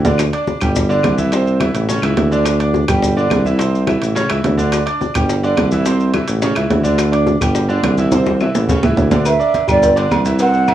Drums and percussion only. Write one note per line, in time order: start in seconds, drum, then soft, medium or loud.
0.05 low bongo medium
0.05 low conga medium
0.05 low timbale loud
0.05 maracas medium
0.18 high bongo medium
0.18 high conga soft
0.18 high timbale medium
0.18 claves medium
0.18 maracas loud
0.33 high conga soft
0.33 high timbale medium
0.33 maracas soft
0.47 high bongo medium
0.47 high conga loud
0.47 low timbale medium
0.47 maracas soft
0.61 high bongo soft
0.61 high conga soft
0.61 low conga medium
0.61 high timbale medium
0.61 claves medium
0.61 maracas medium
0.76 high bongo medium
0.76 high conga soft
0.76 low conga medium
0.76 maracas loud
0.90 high bongo soft
0.90 high conga soft
0.90 maracas soft
1.03 high bongo soft
1.03 low bongo medium
1.03 high conga medium
1.03 high timbale medium
1.03 low timbale medium
1.03 claves medium
1.03 maracas soft
1.18 high bongo soft
1.18 high conga medium
1.18 maracas medium
1.32 high bongo medium
1.32 high timbale medium
1.32 maracas medium
1.46 high conga soft
1.46 maracas soft
1.60 high bongo medium
1.60 high conga loud
1.60 high timbale medium
1.60 low timbale medium
1.60 claves medium
1.60 maracas soft
1.75 high bongo soft
1.75 high conga soft
1.75 high timbale medium
1.75 maracas medium
1.89 high bongo medium
1.89 high conga soft
1.89 maracas medium
2.02 high bongo soft
2.02 high conga soft
2.02 high timbale medium
2.02 claves medium
2.02 maracas soft
2.17 high bongo soft
2.17 low bongo medium
2.17 high conga medium
2.17 high timbale medium
2.17 low timbale medium
2.17 maracas soft
2.31 high bongo soft
2.31 maracas medium
2.45 high bongo medium
2.45 high conga soft
2.45 high timbale medium
2.45 claves medium
2.45 maracas medium
2.60 high conga soft
2.60 high timbale medium
2.60 maracas soft
2.74 high bongo medium
2.74 high conga medium
2.74 low timbale medium
2.74 maracas soft
2.88 high bongo soft
2.88 high conga soft
2.88 low conga medium
2.88 high timbale loud
2.88 claves medium
2.88 maracas medium
3.02 high bongo medium
3.02 high conga soft
3.02 low conga medium
3.02 maracas medium
3.17 high bongo soft
3.17 high conga soft
3.17 maracas soft
3.30 high bongo soft
3.30 low bongo medium
3.30 high conga medium
3.30 high timbale medium
3.30 low timbale medium
3.30 claves medium
3.30 maracas soft
3.45 high bongo soft
3.45 high conga medium
3.45 maracas medium
3.59 high bongo medium
3.59 high conga soft
3.59 high timbale medium
3.59 maracas medium
3.73 high conga soft
3.73 maracas soft
3.87 high bongo medium
3.87 high conga medium
3.87 high timbale medium
3.87 low timbale medium
3.87 claves medium
3.87 maracas soft
4.02 high bongo soft
4.02 high conga soft
4.02 high timbale medium
4.02 maracas medium
4.16 high bongo medium
4.16 high conga soft
4.16 maracas medium
4.29 high bongo soft
4.29 high conga soft
4.29 high timbale loud
4.29 claves medium
4.29 maracas soft
4.44 high bongo soft
4.44 low bongo medium
4.44 high conga medium
4.44 high timbale medium
4.44 low timbale medium
4.44 maracas soft
4.59 high bongo soft
4.59 high conga medium
4.59 maracas medium
4.72 high bongo medium
4.72 high conga soft
4.72 high timbale medium
4.72 claves medium
4.72 maracas medium
4.87 high conga soft
4.87 high timbale medium
4.87 maracas soft
5.01 high bongo medium
5.01 high conga medium
5.01 low timbale medium
5.01 maracas soft
5.14 high bongo soft
5.14 high conga soft
5.14 low conga medium
5.14 high timbale loud
5.14 claves medium
5.14 maracas medium
5.29 high bongo medium
5.29 maracas medium
5.43 high bongo soft
5.43 high conga soft
5.43 maracas soft
5.57 high bongo soft
5.57 low bongo medium
5.57 high conga medium
5.57 high timbale medium
5.57 low timbale medium
5.57 claves medium
5.57 maracas soft
5.71 high bongo soft
5.71 high conga medium
5.71 maracas medium
5.86 high bongo medium
5.86 high conga soft
5.86 high timbale medium
5.86 maracas loud
6.00 high conga soft
6.00 maracas soft
6.14 high bongo medium
6.14 high conga medium
6.14 high timbale medium
6.14 low timbale medium
6.14 claves medium
6.14 maracas soft
6.28 high bongo soft
6.28 high conga soft
6.28 high timbale medium
6.28 maracas medium
6.42 high bongo medium
6.42 maracas medium
6.55 high bongo soft
6.55 high conga soft
6.55 high timbale loud
6.55 claves medium
6.55 maracas soft
6.71 high bongo soft
6.71 low bongo medium
6.71 high conga medium
6.71 high timbale medium
6.71 low timbale medium
6.71 maracas soft
6.85 high bongo soft
6.85 high conga medium
6.85 maracas medium
6.98 high bongo medium
6.98 high conga soft
6.98 high timbale medium
6.98 claves medium
6.98 maracas medium
7.13 high conga soft
7.13 high timbale medium
7.13 maracas soft
7.27 high bongo medium
7.27 high conga medium
7.27 low timbale medium
7.27 maracas soft
7.41 high bongo soft
7.41 high conga soft
7.41 low conga medium
7.41 high timbale medium
7.41 claves medium
7.41 maracas medium
7.55 high bongo medium
7.55 maracas medium
7.69 high bongo soft
7.69 high conga soft
7.69 maracas soft
7.83 high bongo soft
7.83 low bongo medium
7.83 high conga medium
7.83 high timbale medium
7.83 low timbale medium
7.83 claves medium
7.83 maracas soft
7.98 high bongo soft
7.98 high conga medium
7.98 maracas medium
8.12 high bongo medium
8.12 high conga medium
8.12 high timbale medium
8.12 maracas medium
8.26 high bongo loud
8.26 high conga medium
8.26 maracas soft
8.40 high bongo loud
8.40 claves medium
8.40 maracas soft
8.55 low bongo loud
8.55 low timbale medium
8.55 maracas medium
8.69 low bongo loud
8.69 low conga loud
8.69 maracas loud
8.83 low bongo medium
8.83 low conga medium
8.83 low timbale loud
8.83 claves medium
8.83 maracas soft
8.97 low conga medium
8.97 low timbale medium
8.97 maracas soft
9.11 low bongo loud
9.11 low conga medium
9.11 low timbale medium
9.11 maracas medium
9.25 cowbell loud
9.25 low agogo medium
9.25 claves medium
9.25 maracas medium
9.40 high conga soft
9.40 maracas soft
9.54 cowbell medium
9.54 high conga medium
9.54 low timbale medium
9.54 low agogo medium
9.54 maracas soft
9.68 high conga soft
9.68 low conga medium
9.68 low agogo loud
9.68 claves medium
9.68 maracas medium
9.83 cowbell loud
9.83 high conga soft
9.83 low conga medium
9.83 maracas loud
9.97 cowbell medium
9.97 low agogo medium
9.97 maracas soft
10.11 cowbell medium
10.11 high conga medium
10.11 low timbale medium
10.11 low agogo loud
10.11 claves medium
10.11 maracas soft
10.25 cowbell medium
10.25 high conga medium
10.25 maracas medium
10.39 cowbell loud
10.39 high conga soft
10.39 low agogo medium
10.39 maracas medium
10.54 high conga soft
10.54 maracas soft
10.67 cowbell medium
10.67 high conga medium
10.67 low timbale medium
10.67 low agogo loud
10.67 claves medium
10.67 maracas soft